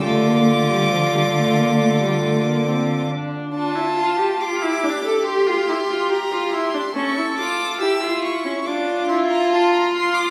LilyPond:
<<
  \new Staff \with { instrumentName = "Violin" } { \time 4/4 \key d \minor \tempo 4 = 70 d'''2.~ d'''8 r8 | a''4 d'''4 c'''4 bes''8 c'''8 | cis'''8 d'''8 e'''8 cis'''8 d'''8 c'''16 bes''16 a''16 bes''16 c'''16 d'''16 | }
  \new Staff \with { instrumentName = "Violin" } { \time 4/4 \key d \minor f'2.~ f'8 r8 | f'4 g'2. | a'4 e'4 f'2 | }
  \new Staff \with { instrumentName = "Viola" } { \time 4/4 \key d \minor a16 bes16 a16 g16 f16 g16 a16 bes16 a16 g16 a16 bes16 c'8 d'8 | d'16 e'16 f'16 g'16 f'16 e'16 d'16 a'16 g'16 f'16 e'16 f'16 g'16 f'16 e'16 d'16 | cis'16 e'16 f'8 g'16 f'8 cis'16 d'8 e'8 f'4 | }
  \new Staff \with { instrumentName = "Cello" } { \clef bass \time 4/4 \key d \minor d2.~ d8 r8 | r1 | r1 | }
>>